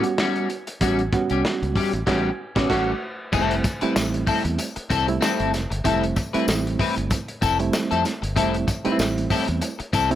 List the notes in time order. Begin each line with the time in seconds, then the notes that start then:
Already playing: G3 B3 C#4 F#4
0.04 muted clean electric guitar stroke, closed hi-hat
0.18 G3 C#4 F#4, snare
0.35 closed hi-hat
0.49 muted clean electric guitar stroke, closed hi-hat
0.67 muted clean electric guitar stroke, closed hi-hat
0.81 A1 G3 B3 C#4 F#4, kick, closed hi-hat
0.99 closed hi-hat
1.12 G3 B3 C#4 F#4, muted clean electric guitar stroke, kick, closed hi-hat
1.30 C2 G3 C#4 G4, closed hi-hat
1.45 snare
1.62 C#2, closed hi-hat
1.76 G3 C#4 G4, kick, open hi-hat
1.93 A1, muted clean electric guitar stroke, closed hi-hat
2.07 A1 G3 B3 C#4 F#4 G4, kick, snare, crash
2.56 A1 G3 B3 C#4 F#4, kick, snare
2.70 A1 G3 A3 C#4 F#4, kick, snare, crash
3.32 F1 G3 A3 C4 E4 A4, kick, crash, tambourine
3.51 closed hi-hat
3.64 muted clean electric guitar stroke, kick, closed hi-hat, tambourine
3.81 G3 A3 C4 E4 B4, muted fingered electric bass stroke, closed hi-hat
3.95 A1, muted clean electric guitar stroke, snare, tambourine
4.14 closed hi-hat
4.27 C4 E4 A4, kick, open hi-hat, tambourine
4.44 E2, muted clean electric guitar stroke, closed hi-hat
4.59 muted clean electric guitar stroke, closed hi-hat, tambourine
4.76 muted clean electric guitar stroke, muted fingered electric bass stroke, closed hi-hat
4.90 C2 C4 E4 A4, kick, closed hi-hat, tambourine
5.08 G3 A3 C4 E4, muted clean electric guitar stroke, closed hi-hat
5.21 C4 E4 A4, snare, tambourine
5.40 G1, closed hi-hat
5.53 F1, muted clean electric guitar stroke, snare, closed hi-hat, tambourine
5.70 G1, muted clean electric guitar stroke, closed hi-hat
5.84 F1 G3 A3 C4 E4 A4, kick, closed hi-hat, tambourine
6.03 closed hi-hat
6.16 muted clean electric guitar stroke, kick, closed hi-hat, tambourine
6.33 G3 A3 C4 E4 B4, muted fingered electric bass stroke, closed hi-hat
6.47 A1, muted clean electric guitar stroke, snare, tambourine
6.67 closed hi-hat
6.79 C4 E4 B4, kick, open hi-hat
6.97 G1, muted clean electric guitar stroke, closed hi-hat
7.10 muted clean electric guitar stroke, kick, closed hi-hat, tambourine
7.28 closed hi-hat
7.41 F1 C4 E4 A4, kick, closed hi-hat, tambourine
7.59 G3 A3 C4 E4, muted clean electric guitar stroke, closed hi-hat
7.73 muted clean electric guitar stroke, snare, tambourine
7.91 F2 C4 E4 A4, closed hi-hat
8.05 muted clean electric guitar stroke, snare, closed hi-hat, tambourine
8.22 G1, muted clean electric guitar stroke, closed hi-hat
8.36 F1 G3 A3 C4 E4 A4, kick, closed hi-hat
8.54 closed hi-hat
8.67 muted clean electric guitar stroke, kick, closed hi-hat, tambourine
8.85 G3 A3 C4 D#4 E4 B4, muted fingered electric bass stroke, closed hi-hat
8.92 E4
8.99 A1, muted clean electric guitar stroke, snare, tambourine
9.18 closed hi-hat
9.30 C4 E4 A4, kick, open hi-hat, tambourine
9.48 E2, closed hi-hat
9.61 muted clean electric guitar stroke, closed hi-hat, tambourine
9.79 muted clean electric guitar stroke, muted fingered electric bass stroke, closed hi-hat
9.93 C2 C4 E4 A4, kick, closed hi-hat, tambourine
10.10 G3 A3 C4 E4, muted clean electric guitar stroke, closed hi-hat